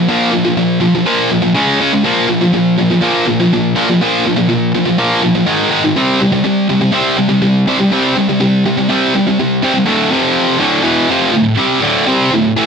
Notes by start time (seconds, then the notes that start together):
0.08 A#2 F3 A#3
0.32 A#2 F3
0.45 A#2 F3
0.57 A#2 F3
0.81 A#2 F3
0.95 A#2 F3
1.06 A#2 F3 A#3
1.31 A#2 F3
1.42 A#2 F3
1.55 C#3 G#3 C#4
1.80 C#3 G#3 C#4
1.93 C#3 G#3
2.04 A#2 F3 A#3
2.29 A#2 F3
2.42 A#2 F3
2.54 A#2 F3
2.79 A#2 F3
2.91 A#2 F3
3.02 A#2 F3 A#3
3.27 A#2 F3
3.40 A#2 F3
3.53 A#2 F3
3.76 A#2 F3 A#3
3.89 A#2 F3
4.01 A#2 F3 A#3
4.26 A#2 F3
4.37 A#2 F3
4.49 A#2 F3
4.75 A#2 F3
4.86 A#2 F3
4.98 A#2 F3 A#3
5.23 A#2 F3
5.35 A#2 F3
5.46 G#2 D#3 G#3
5.70 G#2 D#3 G#3
5.84 G#2 D#3
5.96 C3 G3 C4
6.20 C3 G3
6.32 C3 G3
6.44 C3 G3
6.69 C3 G3
6.81 C3 G3
6.92 C3 G3 C4
7.18 C3 G3
7.29 C3 G3
7.42 C3 G3
7.67 C3 G3 C4
7.79 C3 G3
7.92 C3 G3 C4
8.16 C3 G3
8.29 C3 G3
8.40 C3 G3
8.66 C3 G3
8.78 C3 G3
8.90 C3 G3 C4
9.15 C3 G3
9.28 C3 G3
9.40 C3 G3
9.63 C3 G3 C4
9.74 C3 G3
9.86 D2 A2 D3
10.11 F2 C3 F3
10.60 D2 A2 D3
10.83 E2 B2 E3
11.09 F2 C3 F3
11.33 D2 A2
11.57 C3 G3 C4
11.81 D2 A2 D3
12.06 C3 G3 C4
12.31 D2 A2
12.56 A2 E3 A3